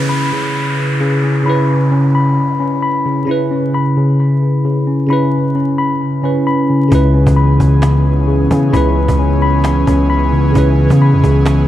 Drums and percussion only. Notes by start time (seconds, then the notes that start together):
6.92 cajon bass
7.14 cajon slap
7.27 cajon bass
7.37 cajon slap
7.60 cajon bass
7.82 cajon slap
8.06 cajon slap
8.28 cajon slap
8.36 cajon slap
8.43 cajon slap
8.51 cajon bass
8.74 cajon bass
8.96 cajon slap
9.08 cajon bass
9.19 cajon slap
9.42 cajon slap
9.49 cajon slap
9.57 cajon slap
9.64 cajon slap
9.72 cajon slap
9.80 cajon slap
9.87 cajon bass
10.10 cajon slap
10.33 cajon slap
10.55 cajon bass
10.78 cajon slap
10.90 cajon bass
11.24 cajon bass
11.45 cajon slap